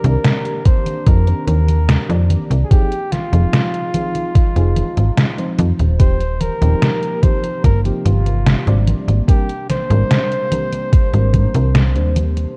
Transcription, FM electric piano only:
0.03 D#3 C4 D4 A#4
0.65 D#3 C4 D4 A#4
1.27 D#3 C4 D4 A#4
2.08 D#3 C4 D4 D5
2.70 F3 C4 D#4 G#4
3.32 F3 C4 D#4 G#4
3.94 F3 C4 D#4 G#4
4.55 F3 C4 D#4 G#4
5.37 F3 C4 D#4 C5
5.99 F3 C4 D#4 G4
6.61 F3 C4 D#4 G4
7.22 F3 C4 D#4 G4
7.84 F3 C4 D#4 G4
8.66 G3 C4 D4 D5
9.28 G3 C4 D4 A#4
9.90 G3 C4 D4 A#4
10.51 G3 C4 D4 A#4
11.13 G3 C4 D4 A#4
11.54 G3 C4 D4 A#4
11.96 G3 C4 D4 C5

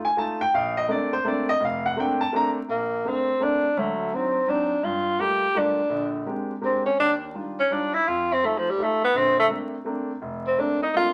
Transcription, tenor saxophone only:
2.70 A#3
3.09 C4
3.43 D4
3.78 A3
4.14 C4
4.49 D4
4.84 F4
5.20 G4
5.58 D4
6.65 C4
6.86 C#4
7.00 D4
7.60 C#4
7.73 D4
7.94 E4
8.08 F4
8.33 C4
8.45 A3
8.58 F3
8.70 G3
8.83 A3
9.04 B3
9.17 C4
9.39 A3
10.47 C4
10.59 D4
10.82 D#4
10.97 F4

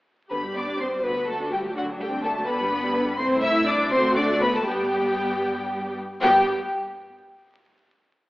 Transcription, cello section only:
0.31 B3
0.55 D4
0.80 C4
1.04 B3
1.28 A3
1.53 G3
1.76 F#3
2.01 G3
2.25 A3
2.48 B3
3.19 C4
3.43 E4
3.67 D4
3.92 C4
4.17 D4
4.42 B3
4.55 A3
4.67 G3
6.22 G3

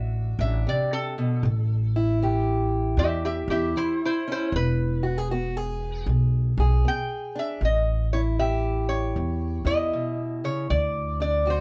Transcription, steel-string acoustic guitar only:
Already playing: A2 D4 F#4
0.40 D4
0.67 C3
1.18 B2
1.45 A2
1.96 E4
2.22 E3 G4
2.98 A2
3.51 E4
3.76 E3
4.28 C#4
4.52 E3
5.03 F#4
5.18 G#4
5.31 B3 F#4
5.57 G#4
6.09 B2
6.60 G#4
6.85 B3
7.35 D4
7.63 A2
8.13 E4
8.39 E3 G4
9.17 A2
9.65 E4
9.93 B2
10.44 C#3
10.70 D3
11.20 D4
11.46 F#3 F#4

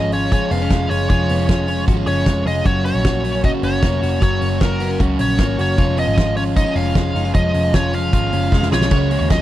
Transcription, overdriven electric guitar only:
Already playing: F3 G#3 C#4 F4
0.13 G#3 C#4 F4
0.32 F3 G#3 C#4 F4
0.70 F3 G#3 C#4 F4
0.90 G#3 C#4 F4
1.10 F3 G#3 C#4 F4
1.48 F3 G#3 C#4 F4
1.68 G#3 C#4 F4
1.87 F3 G#3 C#4 F4
2.27 F3 G#3 C#4 F4
2.45 G#3 C#4 F4
2.65 F#2 C#3 F#3 A#3 C#4 F#4
3.05 F#3 A#3 C#4 F#4
3.24 F#3 A#3 C#4 F#4
3.43 F#2 C#3 F#3 A#3 C#4 F#4
3.82 F#3 A#3 C#4 F#4
4.01 F#3 A#3 C#4 F#4
4.21 F#2 C#3 F#3 A#3 C#4 F#4
4.60 F#3 A#3 C#4 F#4
4.80 F#3 A#3 C#4 F#4
5.00 F#2 C#3 F#3 A#3 C#4 F#4
5.40 F#3 A#3 C#4 F#4
5.58 F#3 A#3 C#4 F#4
5.78 F3 G#3 C#4 F4
6.17 F3 G#3 C#4 F4
6.37 G#3 C#4 F4
6.56 F3 G#3 C#4 F4
6.94 F3 G#3 C#4 F4
7.15 G#3 C#4 F4
7.35 F3 G#3 C#4 F4
7.74 F3 G#3 C#4 F4
7.93 G#3 C#4 F4
8.13 F3 G#3 C#4 F4
8.52 F3 G#3 C#4 F4
8.71 G#3 C#4 F4
8.89 C#3 F#3 G#3 C#4 F#4
9.10 G#3 C#4 F#4
9.30 C#3 F#3 G#3 C#4 F#4

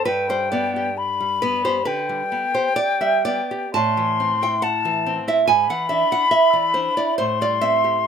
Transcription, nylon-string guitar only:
0.05 G2 B4
0.29 G3 C5
0.52 B3 D5
0.76 G4
1.20 G3
1.42 B3 B4
1.65 G4 C5
1.85 D3 B4
2.09 G3
2.32 B3
2.54 G4 C5
2.76 D5
3.01 G3 E5
3.25 B3 D5
3.51 G4
3.74 A2 A5
3.97 E3
4.20 C4
4.42 E4 G5
4.62 F#5
4.85 E3
5.06 C4
5.28 E4 E5
5.47 G#2 G#5
5.70 E3 F#5
5.89 D4 E5
6.12 E4 F#5
6.31 E5
6.53 E3 D5
6.74 D4 C5
6.97 E4 D5
7.18 A2 C5
7.41 G3 D5
7.61 C4 E5
7.84 G4

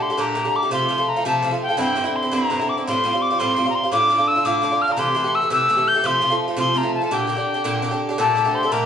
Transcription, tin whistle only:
0.02 C6
0.21 A#5
0.56 D6
0.73 C6
1.09 A#5
1.27 A5
1.62 G5
1.80 G5
2.16 C6
2.34 A#5
2.69 D6
2.87 C6
3.22 D6
3.39 C6
3.70 A#5
3.75 C6
3.92 D6
4.28 E6
4.46 D6
4.82 F6
4.92 A#5
4.99 C6
5.35 E6
5.52 E6
5.88 G6
6.06 C6
6.59 C6
6.78 A#5
6.94 A5
7.05 A5
7.14 G5
8.20 A5
8.55 C6
8.72 A#5

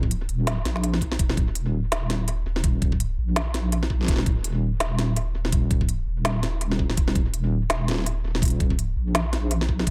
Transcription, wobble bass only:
Already playing: D#1
0.07 D1
0.29 D#1
0.65 A#1
1.19 D#1
1.92 D#1
2.46 D#1
2.96 D1
3.18 A#1
4.08 D#1
4.80 D#1
5.35 D#1
6.07 D#1
6.97 D#1
7.70 D#1
8.24 D#1
8.74 D1
8.96 A#1
9.87 D#1

